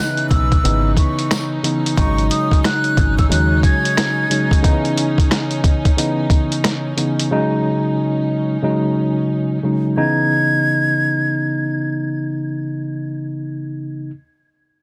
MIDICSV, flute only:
0, 0, Header, 1, 2, 480
1, 0, Start_track
1, 0, Key_signature, 4, "minor"
1, 0, Tempo, 666667
1, 1421, Time_signature, 4, 2, 24, 8
1, 10674, End_track
2, 0, Start_track
2, 0, Title_t, "Flute"
2, 0, Program_c, 0, 73
2, 0, Note_on_c, 0, 90, 113
2, 195, Note_off_c, 0, 90, 0
2, 213, Note_on_c, 0, 88, 96
2, 668, Note_off_c, 0, 88, 0
2, 703, Note_on_c, 0, 85, 83
2, 1069, Note_off_c, 0, 85, 0
2, 1422, Note_on_c, 0, 85, 101
2, 1638, Note_off_c, 0, 85, 0
2, 1660, Note_on_c, 0, 87, 96
2, 1877, Note_off_c, 0, 87, 0
2, 1903, Note_on_c, 0, 90, 98
2, 2269, Note_off_c, 0, 90, 0
2, 2292, Note_on_c, 0, 88, 85
2, 2373, Note_off_c, 0, 88, 0
2, 2385, Note_on_c, 0, 90, 82
2, 2600, Note_off_c, 0, 90, 0
2, 2621, Note_on_c, 0, 92, 84
2, 3312, Note_off_c, 0, 92, 0
2, 7181, Note_on_c, 0, 92, 96
2, 8592, Note_off_c, 0, 92, 0
2, 10674, End_track
0, 0, End_of_file